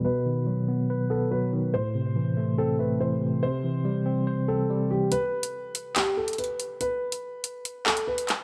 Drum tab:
HH |--------------------------------|--------------------------------|--------------------------------|x-----x-----x---x-----xxxx--x---|
CP |--------------------------------|--------------------------------|--------------------------------|----------------x---------------|

HH |x-----x-----x---x-----x---x-x---|
CP |--------------------x-------x---|